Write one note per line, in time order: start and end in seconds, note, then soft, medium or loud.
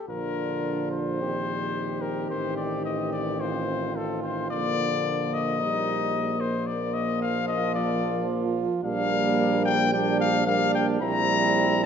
0.08 2.27 A#1 medium
0.08 1.23 D3 medium
0.08 1.22 D4 medium
0.08 1.22 F4 medium
0.08 0.91 A#4 medium
0.92 2.03 C5 loud
1.21 4.51 D#3 medium
1.21 4.50 C4 medium
1.21 3.43 G4 medium
2.02 2.30 A#4 medium
2.30 4.47 A1 medium
2.30 2.57 C5 medium
2.57 2.84 D5 medium
2.85 3.12 D#5 medium
3.13 3.42 D5 medium
3.41 5.59 F4 medium
3.41 3.98 C5 loud
3.96 4.23 A4 medium
4.23 4.50 C5 medium
4.51 8.67 A#1 medium
4.51 5.64 D3 medium
4.51 8.68 A#3 medium
4.51 5.35 D5 loud
5.34 6.42 D#5 loud
5.59 6.42 G3 medium
5.59 6.39 D#4 medium
6.41 6.69 C5 loud
6.67 8.81 F3 medium
6.67 8.80 F4 medium
6.67 6.95 D5 medium
6.94 7.21 D#5 loud
7.22 7.47 F5 loud
7.48 7.74 D#5 loud
7.75 8.28 D5 loud
8.84 10.97 A#1 medium
8.84 9.89 G3 medium
8.84 9.89 A#3 medium
8.84 9.88 D4 medium
8.84 9.61 F5 loud
9.66 9.92 G5 loud
9.92 10.45 G3 medium
9.92 10.46 A#3 medium
9.92 10.45 D4 medium
9.92 10.19 G5 loud
10.21 10.46 F5 loud
10.45 11.00 G3 medium
10.45 11.03 A#3 medium
10.45 11.02 D4 medium
10.45 10.74 F5 loud
10.75 10.87 G5 loud
11.00 11.86 A#1 medium
11.00 11.86 G3 loud
11.00 11.86 C4 medium
11.00 11.86 E4 medium
11.00 11.82 A#5 loud